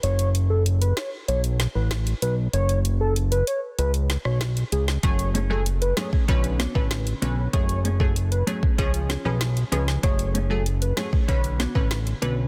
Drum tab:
HH |xxx-xxx-xxx-xxx-|xxx-xxx-xxx-xxx-|xxx-xxx-xxx-xxx-|xxx-xxx-xxx-xxx-|
SD |------o---o-o---|----------oro--o|------o---o-o---|----------o-o--o|
BD |----------------|----------------|o------oo--o----|o--o---oo-------|

HH |xxx-xxx-xxx-xxx-|
SD |------o---o-o---|
BD |o------oo--o----|